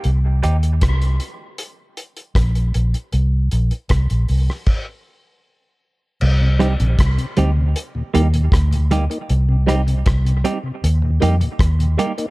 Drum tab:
CC |----------------|--------x-------|x---------------|----------------|
HH |x-xxxxx-x-xxxxxx|x-xxxxo---------|--xxxxx-x-xxxxxx|x-xxxxx-x-xxxxxx|
SD |----r-------r---|----r--r--------|--r-r-------r---|--r-r-------r---|
BD |----o-------o---|----o---o-------|----o-------o---|----o-------o---|